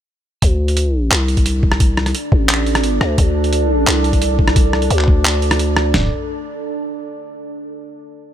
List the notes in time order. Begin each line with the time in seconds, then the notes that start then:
0.42 D2 D4 A4 D5, kick, closed hi-hat
0.68 closed hi-hat
0.77 closed hi-hat
1.11 C2, cross-stick, clap, closed hi-hat
1.28 closed hi-hat
1.37 kick, closed hi-hat
1.46 closed hi-hat
1.63 kick
1.72 cross-stick
1.80 kick, closed hi-hat
1.97 cross-stick
2.06 cross-stick, closed hi-hat
2.15 closed hi-hat
2.32 A1, kick
2.49 clap, closed hi-hat
2.66 closed hi-hat
2.75 cross-stick, closed hi-hat
2.80 G#1, closed hi-hat
3.01 D2, cross-stick
3.18 D2, kick, closed hi-hat
3.44 closed hi-hat
3.53 closed hi-hat
3.87 C2, cross-stick, clap, closed hi-hat
4.04 closed hi-hat
4.13 kick, closed hi-hat
4.22 closed hi-hat
4.39 kick
4.48 cross-stick
4.56 kick, closed hi-hat
4.73 cross-stick
4.82 closed hi-hat
4.90 D2, closed hi-hat
4.99 clap
5.08 kick
5.25 clap, closed hi-hat
5.42 closed hi-hat
5.51 cross-stick, closed hi-hat
5.59 closed hi-hat
5.76 cross-stick
5.94 D1, snare, floor tom